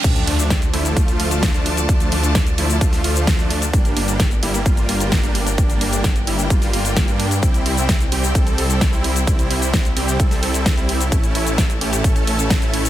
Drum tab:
CC |x---------------|----------------|----------------|----------------|
RD |x-x-x-x-x-x-x-x-|x-x-x-x-x-x-x-x-|x-x-x-x-x-x-x-x-|x-x-x-x-x-x-x-x-|
HH |xxoxxxoxxxoxxxox|xxoxxxoxxooxxxox|xxoxxxoxxxoxxxox|xxoxxxoxxooxxxox|
SH |xx-xxx-xxx-xxx-x|xx-xxx-xxx-xxx-x|xx-xxx-xxx-xxx-x|xx-xxx-xxx-xxx-x|
SD |----o-------o---|----o----o--o---|----o-------o---|----o----o--o---|
BD |o---o---o---o---|o---o---o---o---|o---o---o---o---|o---o---o---o---|

CC |----------------|----------------|----------------|
RD |x-x-x-x-x-x-x-x-|x-x-x-x-x-x-x-x-|x-x-x-x-x-x-x-x-|
HH |xxoxxxoxxxoxxxox|xxoxxxoxxooxxxox|xxoxxxoxxxoxxxox|
SH |xx-xxx-xxx-xxx-x|xx-xxx-xxx-xxx-x|xx-xxx-xxx-xxx-x|
SD |----o-------o---|----o----o--o---|----o-------o---|
BD |o---o---o---o---|o---o---o---o---|o---o---o---o---|